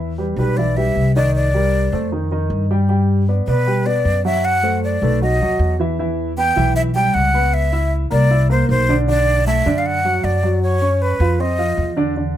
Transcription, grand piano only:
0.00 0.11 E3 medium
0.00 0.12 E4 medium
0.00 0.12 E5 medium
0.18 0.34 G3 medium
0.18 0.35 G4 medium
0.18 0.35 B4 medium
0.38 0.54 G3 medium
0.38 0.54 G4 medium
0.38 0.54 B4 medium
0.58 0.74 E3 medium
0.58 0.74 E4 medium
0.58 0.74 E5 medium
0.77 1.09 G3 medium
0.77 1.09 G4 medium
0.77 1.09 B4 medium
1.16 1.48 D#3 medium
1.16 1.48 D#4 medium
1.16 1.48 D#5 medium
1.54 1.86 G3 medium
1.54 1.86 G4 medium
1.54 1.86 A#4 medium
1.93 2.09 A3 medium
1.93 2.09 A4 medium
1.93 2.09 C5 medium
2.12 2.28 D#3 medium
2.12 2.28 D#4 medium
2.12 2.28 D#5 medium
2.31 2.63 D#3 medium
2.31 2.64 D#4 medium
2.31 2.64 D#5 medium
2.71 2.86 G3 medium
2.71 2.86 G4 medium
2.71 2.87 G5 medium
2.89 3.21 G3 medium
2.89 3.21 G4 medium
2.89 3.22 G5 medium
3.28 3.44 B3 medium
3.28 3.44 B4 medium
3.28 3.45 D5 medium
3.48 3.64 B3 medium
3.48 3.64 B4 medium
3.48 3.64 D5 medium
3.67 3.83 G3 medium
3.67 3.83 G4 medium
3.67 3.83 G5 medium
3.86 4.18 B3 medium
3.86 4.18 B4 medium
3.86 4.18 D5 medium
4.25 4.57 F#3 medium
4.25 4.57 F#4 medium
4.25 4.57 F#5 medium
4.63 4.95 A3 medium
4.63 4.95 A4 medium
4.63 4.95 C5 medium
5.02 5.18 A3 medium
5.02 5.18 A4 medium
5.02 5.19 B4 medium
5.22 5.38 F#3 medium
5.22 5.38 F#4 medium
5.22 5.38 F#5 medium
5.41 5.73 F#3 medium
5.41 5.73 F#4 medium
5.41 5.73 F#5 medium
5.80 5.96 E3 medium
5.80 5.96 E4 medium
5.80 5.96 E5 medium
5.99 6.31 E3 medium
5.99 6.31 E4 medium
5.99 6.31 E5 medium
6.38 6.53 B3 medium
6.38 6.54 B4 medium
6.38 6.54 B5 medium
6.56 6.88 E3 medium
6.56 6.89 E4 medium
6.56 6.89 E5 medium
6.96 7.27 G3 medium
6.96 7.27 G4 medium
6.96 7.28 G5 medium
7.34 7.66 B3 medium
7.34 7.66 B4 medium
7.34 7.66 B5 medium
7.73 8.04 E4 medium
7.73 8.04 E5 medium
7.73 8.05 E6 medium
8.10 8.27 A#3 medium
8.10 8.27 A#4 medium
8.10 8.27 A#5 medium
8.31 8.46 E4 medium
8.31 8.47 E5 medium
8.31 8.47 E6 medium
8.50 8.81 A#3 medium
8.50 8.82 A#4 medium
8.50 8.82 A#5 medium
8.89 9.05 D3 medium
8.89 9.05 D4 medium
8.89 9.05 D5 medium
9.08 9.39 D3 medium
9.08 9.40 D4 medium
9.08 9.40 D5 medium
9.47 9.62 A3 medium
9.47 9.63 A4 medium
9.47 9.63 A5 medium
9.66 9.98 D3 medium
9.66 9.98 D4 medium
9.66 9.98 D5 medium
10.05 10.36 F#3 medium
10.05 10.36 F#4 medium
10.05 10.36 F#5 medium
10.43 10.75 F#3 medium
10.43 10.75 F#4 medium
10.43 10.75 F#5 medium
10.81 11.13 C#4 medium
10.81 11.13 C#5 medium
10.81 11.13 C#6 medium
11.20 11.36 F3 medium
11.20 11.36 F4 medium
11.20 11.36 F5 medium
11.39 11.55 C4 medium
11.39 11.55 C5 medium
11.39 11.56 C6 medium
11.58 11.90 F3 medium
11.58 11.90 F4 medium
11.58 11.91 F5 medium
11.97 12.13 D3 medium
11.97 12.13 D4 medium
11.97 12.13 D5 medium
12.16 12.37 D3 medium
12.16 12.37 D4 medium
12.16 12.37 D5 medium

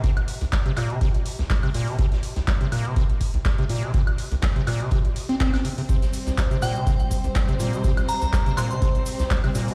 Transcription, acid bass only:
0.04 0.11 C3 loud
0.41 0.45 C2 medium
0.53 0.57 G3 medium
0.66 0.72 C3 loud
0.77 0.92 A#2 loud
0.90 0.99 C3 medium
1.01 1.09 C3 loud
1.39 1.43 C2 medium
1.50 1.55 G3 medium
1.63 1.70 C3 loud
1.75 1.89 A#2 loud
1.88 1.97 C3 medium
1.99 2.06 C3 loud
2.37 2.40 C2 medium
2.48 2.52 G3 medium
2.61 2.67 C3 loud
2.72 2.87 A#2 loud
2.85 2.95 C3 medium
2.97 3.04 C3 loud
3.34 3.38 C2 medium
3.45 3.50 G3 medium
3.59 3.65 C3 loud
3.70 3.84 A#2 loud
3.83 3.92 C3 medium
3.94 4.01 C3 loud
4.32 4.35 C2 medium
4.43 4.47 G3 medium
4.56 4.62 C3 medium
4.67 4.82 A#2 loud
4.80 4.90 C3 medium
4.92 4.99 C3 loud
5.29 5.35 C4 loud
5.40 5.51 C4 loud
5.54 5.57 C4 medium
5.65 5.69 C3 medium
5.78 5.82 C3 medium
5.89 5.96 C3 loud
6.27 6.31 C2 medium
6.38 6.42 G3 medium
6.51 6.57 C3 loud
6.62 6.77 A#2 loud
6.76 6.85 C3 medium
6.87 6.94 C3 loud
7.24 7.28 C2 medium
7.36 7.40 G3 medium
7.49 7.55 C3 loud
7.60 7.75 A#2 medium
7.73 7.82 C3 medium
7.84 7.92 C3 loud
8.22 8.26 C2 medium
8.33 8.38 G3 medium
8.46 8.52 C3 loud
8.57 8.72 A#2 loud
8.71 8.80 C3 medium
8.82 8.89 C3 loud
9.20 9.23 C2 medium
9.31 9.35 G3 medium
9.44 9.50 C3 loud
9.55 9.70 A#2 medium
9.68 9.74 C3 medium

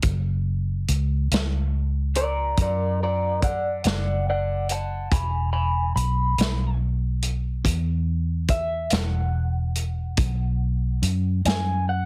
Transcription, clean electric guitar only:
2.16 2.58 A#4 medium
2.16 2.57 D5 medium
2.61 2.99 A#4 medium
2.61 3.01 D5 medium
3.03 3.41 A#4 medium
3.03 3.42 D5 medium
3.43 3.82 D5 medium
3.43 3.84 F#5 medium
3.86 4.25 D5 medium
3.86 4.27 F#5 medium
4.29 4.68 D5 medium
4.29 4.70 F#5 medium
4.71 5.10 F#5 medium
4.71 5.12 A5 medium
5.12 5.51 G#5 medium
5.12 5.52 B5 medium
5.53 5.93 G#5 medium
5.53 5.94 B5 medium
5.96 6.78 B5 medium
8.50 8.93 E5 medium
8.93 11.42 F#5 medium
11.46 11.87 G#5 medium
11.89 12.05 F#5 medium

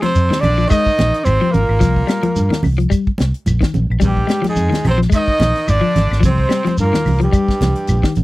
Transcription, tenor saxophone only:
0.02 0.42 C4 medium
0.41 0.68 D4 medium
0.68 1.26 D#4 loud
1.24 1.53 C4 medium
1.51 2.63 A#3 medium
4.04 4.43 G3 medium
4.48 4.84 G#3 medium
4.88 5.00 C4 medium
5.15 5.73 D#4 medium
5.72 6.25 D4 medium
6.25 6.75 C4 medium
6.81 7.19 A#3 medium
7.22 8.13 G3 medium

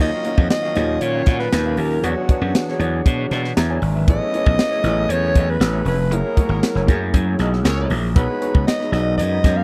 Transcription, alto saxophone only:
0.01 0.48 D#5 loud
0.50 1.04 D#5 loud
1.02 1.39 C#5 loud
1.39 1.80 B4 loud
1.79 2.06 A#4 loud
2.05 3.06 F#4 medium
4.11 5.13 D#5 loud
5.11 5.52 C#5 loud
5.50 5.87 B4 loud
5.87 6.15 B4 loud
6.13 7.15 A#4 medium
8.16 8.64 B4 medium
8.67 8.91 D#5 medium
8.93 9.16 D#5 medium
9.18 9.58 D#5 loud
9.57 9.64 F5 loud

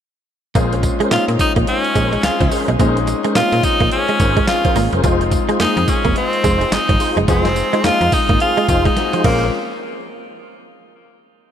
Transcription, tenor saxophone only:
1.13 1.25 F4 loud
1.41 1.53 D#4 loud
1.69 2.20 C#4 loud
2.24 2.66 F4 medium
3.36 3.66 F4 loud
3.64 3.92 D#4 loud
3.92 4.44 C#4 loud
4.48 4.90 F4 medium
5.61 5.91 D#4 loud
5.89 6.17 C#4 medium
6.17 6.75 C4 loud
6.73 7.18 D#4 loud
7.30 7.87 C4 loud
7.86 8.15 F4 loud
8.14 8.41 D#4 loud
8.41 8.67 F4 loud
8.69 8.88 F4 loud
8.86 9.25 D#4 medium
9.25 9.51 A#3 loud

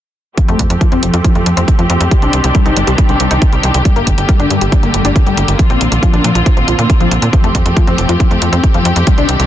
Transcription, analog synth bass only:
0.48 0.56 F2 medium
0.59 0.67 F2 loud
0.70 0.78 F2 medium
0.92 1.00 F2 medium
1.03 1.10 F1 medium
1.14 1.21 F2 medium
1.35 1.43 F2 medium
1.46 1.54 F2 medium
1.57 1.65 F2 medium
1.79 1.87 F2 medium
1.90 1.98 F2 loud
2.01 2.08 F2 medium
2.22 2.30 C2 medium
2.33 2.41 C2 medium
2.44 2.52 C2 medium
2.66 2.74 C2 medium
2.77 2.84 G1 medium
2.88 2.95 C2 medium
3.09 3.17 C2 medium
3.20 3.28 C2 loud
3.31 3.39 C2 medium
3.53 3.61 C2 medium
3.64 3.71 C2 medium
3.75 3.82 C2 medium
3.96 4.04 G1 medium
4.07 4.15 G1 medium
4.18 4.26 G1 medium
4.40 4.47 G1 medium
4.51 4.58 G2 medium
4.61 4.69 G1 medium
4.83 4.91 G1 medium
4.94 5.02 G1 medium
5.05 5.13 G1 medium
5.27 5.34 G1 medium
5.37 5.45 G1 medium
5.48 5.56 G1 medium
5.70 5.78 A#1 medium
5.81 5.89 A#1 medium
5.92 6.00 A#1 medium
6.13 6.21 A#1 medium
6.24 6.32 A#2 medium
6.35 6.43 A#1 medium
6.57 6.65 A#1 medium
6.68 6.76 A#1 medium
6.79 6.87 A#2 medium
7.00 7.08 A#1 medium
7.11 7.19 A#1 loud
7.22 7.30 A#2 medium
7.44 7.52 F2 medium
7.55 7.63 F2 medium
7.66 7.74 F2 medium
7.87 7.95 F2 medium
7.98 8.06 F1 medium
8.09 8.17 F2 medium
8.31 8.39 F2 medium
8.42 8.50 F2 loud
8.53 8.60 F2 medium
8.75 8.82 F2 medium
8.85 8.93 F2 medium
8.96 9.04 F2 medium
9.18 9.26 C2 medium
9.29 9.37 C2 loud
9.40 9.46 C2 medium

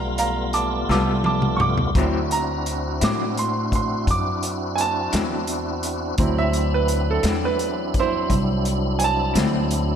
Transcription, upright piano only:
0.00 1.92 A3 soft
0.00 1.93 B3 soft
0.00 1.93 F4 soft
0.00 0.16 F5 medium
0.00 0.18 A#5 medium
0.19 0.52 F5 medium
0.19 0.54 A#5 medium
0.54 0.87 A5 medium
0.54 0.89 D6 medium
0.90 1.23 A5 medium
0.90 1.24 D6 medium
1.26 1.59 A5 medium
1.26 1.59 D6 medium
1.57 1.61 C#6 medium
1.61 1.95 D6 medium
1.96 2.98 F#3 soft
1.96 2.98 C4 soft
1.96 2.98 E4 soft
2.32 3.00 A#5 medium
3.04 3.37 D6 medium
3.39 3.72 C6 medium
3.75 4.08 C6 medium
4.11 4.44 D6 medium
4.76 4.79 G#5 medium
4.81 6.34 A5 medium
6.20 6.66 F#3 soft
6.20 6.66 C4 soft
6.20 6.67 E4 soft
6.38 6.72 E5 medium
6.74 7.07 B4 medium
7.11 7.43 A4 medium
7.45 7.95 B4 medium
8.00 8.30 E4 medium
8.00 8.32 C5 medium
8.99 9.02 G#5 medium
9.04 9.96 A5 medium

